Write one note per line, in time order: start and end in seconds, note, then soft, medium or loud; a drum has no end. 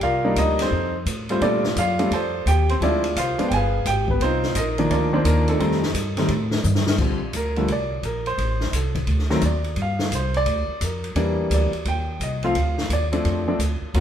0.01 0.35 C2 medium
0.01 0.35 F4 medium
0.01 0.35 A#4 medium
0.01 0.35 D5 medium
0.01 0.38 F5 medium
0.01 kick soft
0.01 ride medium
0.24 0.69 G3 medium
0.24 0.69 A#3 medium
0.24 0.69 D4 medium
0.24 0.37 D#4 medium
0.36 0.70 D2 medium
0.36 0.59 D#4 medium
0.36 0.61 D#5 medium
0.36 kick soft
0.36 hi-hat pedal medium
0.36 ride medium
0.59 0.93 C4 medium
0.59 0.93 D#4 medium
0.59 0.93 A4 medium
0.59 0.93 C5 medium
0.59 snare soft
0.59 ride medium
0.71 1.05 F2 medium
0.71 kick soft
1.06 1.40 A2 medium
1.06 kick soft
1.06 hi-hat pedal medium
1.06 ride medium
1.29 1.40 G3 medium
1.29 1.40 A3 medium
1.29 1.40 C4 medium
1.29 1.40 F4 medium
1.29 1.43 C5 medium
1.29 ride soft
1.41 1.75 A#2 medium
1.41 1.62 G3 medium
1.41 1.62 A3 medium
1.41 1.62 C4 medium
1.41 1.62 D4 medium
1.41 1.75 F4 medium
1.41 1.75 A4 medium
1.41 1.78 D5 medium
1.41 kick soft
1.41 ride medium
1.64 snare soft
1.76 2.10 F#2 medium
1.76 2.10 F5 loud
1.76 kick soft
1.76 hi-hat pedal medium
1.76 ride medium
1.80 2.11 F4 medium
1.80 2.11 D5 medium
1.99 2.10 G3 medium
1.99 2.10 A3 medium
1.99 2.10 C4 medium
1.99 2.10 D4 medium
1.99 ride soft
2.11 2.45 F2 medium
2.11 2.45 A4 medium
2.11 2.45 C5 medium
2.11 2.45 D5 medium
2.11 2.45 A5 medium
2.11 kick soft
2.11 ride medium
2.46 2.80 D#2 medium
2.46 2.68 G4 medium
2.46 2.70 G5 medium
2.46 kick soft
2.46 hi-hat pedal soft
2.46 ride medium
2.69 2.76 C4 medium
2.69 2.75 C5 medium
2.69 ride soft
2.81 3.14 D2 medium
2.81 3.01 F3 medium
2.81 3.01 G#3 medium
2.81 3.02 C4 medium
2.81 3.02 E4 medium
2.81 3.15 G#4 medium
2.81 3.18 D5 medium
2.81 kick soft
2.81 ride medium
2.85 3.15 D4 medium
2.85 3.15 F4 medium
3.04 ride medium
3.16 3.37 C2 medium
3.16 3.45 F4 medium
3.16 3.45 C5 medium
3.16 3.47 F5 medium
3.16 kick soft
3.16 hi-hat pedal medium
3.16 ride medium
3.38 3.49 F3 medium
3.38 3.49 G#3 medium
3.38 3.50 B3 medium
3.38 3.50 D4 medium
3.38 muted upright bass stroke soft
3.38 ride medium
3.48 3.85 G1 medium
3.48 3.52 G5 medium
3.48 kick soft
3.48 ride medium
3.53 3.86 G#4 medium
3.53 3.86 B4 medium
3.53 3.86 F5 medium
3.53 3.84 G#5 loud
3.85 4.19 G#1 medium
3.85 4.08 G4 medium
3.85 4.09 G5 loud
3.85 kick soft
3.85 hi-hat pedal medium
3.85 ride medium
4.08 4.22 B4 medium
4.08 kick soft
4.12 4.22 B3 medium
4.20 4.54 C2 medium
4.20 4.54 C4 medium
4.20 4.54 F4 medium
4.20 4.54 C5 medium
4.20 kick soft
4.20 ride medium
4.24 4.55 D#4 medium
4.43 snare soft
4.55 4.89 A#1 medium
4.55 4.89 D#4 medium
4.55 4.89 A#4 medium
4.55 4.88 D#5 medium
4.55 kick soft
4.55 hi-hat pedal medium
4.55 ride medium
4.78 5.11 D#3 medium
4.78 5.11 F3 medium
4.78 5.11 A#3 medium
4.78 4.92 D4 medium
4.78 ride soft
4.90 5.24 D2 medium
4.90 5.12 D4 medium
4.90 5.13 F4 medium
4.90 5.12 A#4 medium
4.90 5.14 D5 medium
4.90 kick soft
4.90 ride medium
5.13 5.57 D#3 medium
5.13 5.58 F3 medium
5.13 5.27 A#3 medium
5.13 5.21 C4 medium
5.13 5.58 D4 medium
5.13 5.20 C5 medium
5.24 5.58 D#2 medium
5.24 5.48 A#3 medium
5.24 5.49 A#4 medium
5.24 kick soft
5.24 hi-hat pedal soft
5.24 ride medium
5.48 5.58 A3 medium
5.48 5.59 C4 medium
5.48 6.62 D#4 medium
5.48 6.61 A4 medium
5.48 ride soft
5.60 5.93 F2 medium
5.60 5.80 D#3 medium
5.60 5.80 G3 medium
5.60 5.80 A3 medium
5.60 5.80 C4 medium
5.60 kick soft
5.60 ride medium
5.71 snare soft
5.83 snare medium
5.94 6.28 G2 medium
5.94 kick soft
5.94 hi-hat pedal medium
5.94 ride medium
6.17 6.28 D#3 medium
6.17 6.29 G3 medium
6.17 6.29 A3 medium
6.17 6.29 C4 medium
6.17 snare soft
6.17 ride soft
6.28 6.63 A2 medium
6.28 kick soft
6.28 ride medium
6.51 snare medium
6.63 6.98 G2 medium
6.63 hi-hat pedal medium
6.63 mid tom soft
6.75 snare medium
6.87 snare medium
6.98 7.32 A#1 medium
6.98 7.20 D3 soft
6.98 7.20 F3 soft
6.98 7.20 G3 soft
6.98 7.20 C4 medium
6.98 kick medium
6.98 crash medium
7.33 7.67 D2 medium
7.33 7.68 A#4 medium
7.33 kick soft
7.33 hi-hat pedal soft
7.33 ride medium
7.56 7.68 D3 medium
7.56 7.68 F3 medium
7.56 7.68 G3 medium
7.56 7.68 A3 medium
7.56 ride soft
7.68 8.02 C2 medium
7.68 kick soft
7.68 ride medium
7.72 8.03 D5 medium
8.03 8.37 A#1 medium
8.03 8.26 A#4 medium
8.03 kick soft
8.03 hi-hat pedal soft
8.03 ride medium
8.26 8.70 C5 medium
8.26 ride soft
8.38 8.72 A1 medium
8.38 kick soft
8.38 ride medium
8.60 snare soft
8.72 9.06 C2 medium
8.72 8.96 A4 medium
8.72 kick soft
8.72 hi-hat pedal soft
8.72 ride medium
8.95 kick soft
8.95 ride soft
9.07 9.41 D2 medium
9.07 kick soft
9.07 ride medium
9.19 snare soft
9.30 9.41 D#3 medium
9.30 9.41 F#3 medium
9.30 9.41 A3 medium
9.30 9.42 C4 medium
9.30 snare soft
9.41 9.75 D#2 medium
9.41 kick soft
9.41 hi-hat pedal soft
9.41 ride medium
9.46 9.77 D5 medium
9.64 ride soft
9.76 10.10 G2 medium
9.76 kick soft
9.76 ride medium
9.82 10.12 F5 medium
9.99 snare medium
10.11 10.45 C2 medium
10.11 10.35 C5 medium
10.11 kick soft
10.11 hi-hat pedal medium
10.11 ride medium
10.34 10.79 D5 loud
10.34 ride soft
10.46 10.67 D2 medium
10.46 kick soft
10.46 ride medium
10.68 muted upright bass stroke soft
10.81 11.14 F2 medium
10.81 11.05 A#4 medium
10.81 kick soft
10.81 hi-hat pedal medium
10.81 ride medium
11.04 ride soft
11.15 11.49 E2 medium
11.15 11.69 E3 medium
11.15 11.69 G3 medium
11.15 11.69 A#3 medium
11.15 11.69 D4 medium
11.15 kick soft
11.15 ride medium
11.50 11.72 D2 medium
11.50 11.85 D5 medium
11.50 kick soft
11.50 hi-hat pedal medium
11.50 ride medium
11.72 muted upright bass stroke soft
11.72 ride soft
11.85 12.19 D#2 medium
11.85 12.19 G5 medium
11.85 kick soft
11.85 ride medium
12.20 12.54 C2 medium
12.20 12.44 D#5 medium
12.20 kick soft
12.20 hi-hat pedal soft
12.20 ride medium
12.43 12.54 F3 medium
12.43 12.54 A3 medium
12.43 12.55 C4 medium
12.43 12.55 F4 medium
12.43 12.88 F5 medium
12.43 ride soft
12.55 12.89 D2 medium
12.55 kick soft
12.55 ride medium
12.78 snare medium
12.89 13.23 D#2 medium
12.89 13.06 D5 medium
12.89 kick soft
12.89 hi-hat pedal medium
12.89 ride medium
13.12 13.45 F3 medium
13.12 13.45 A3 medium
13.12 13.45 C4 medium
13.12 13.45 D4 medium
13.12 ride soft
13.24 13.58 F2 medium
13.24 kick soft
13.24 ride medium
13.48 13.59 F3 medium
13.48 13.59 A3 medium
13.48 13.59 C4 medium
13.48 13.59 D4 medium
13.59 13.80 D2 medium
13.59 kick soft
13.59 hi-hat pedal medium
13.59 ride medium
13.81 muted upright bass stroke soft
13.94 14.00 D#2 medium
13.94 14.00 F#3 medium
13.94 14.00 A#3 medium
13.94 14.00 C#4 medium
13.94 14.00 F4 medium
13.94 kick soft
13.94 ride medium